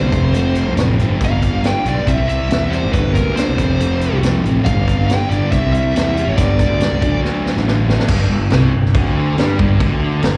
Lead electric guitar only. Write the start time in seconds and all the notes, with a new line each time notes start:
Already playing: C5
1.25 F5
1.66 G5
1.88 D5
2.08 E5
2.29 E5
2.70 C5
2.93 B4
3.14 A#4
3.36 C5
4.65 F5
5.08 G5
5.29 D5
5.52 E5
5.73 E5
6.29 C#5
6.37 D5